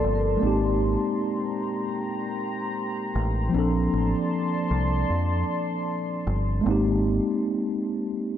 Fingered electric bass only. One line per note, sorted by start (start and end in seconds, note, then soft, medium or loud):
0.04 0.36 G1 medium
0.43 0.95 G#1 loud
3.15 3.48 A1 medium
3.54 3.87 A#1 medium
3.93 4.13 A1 medium
4.71 5.03 C2 medium
5.10 5.42 F2 medium
6.27 6.59 G1 loud
6.66 7.19 G#1 loud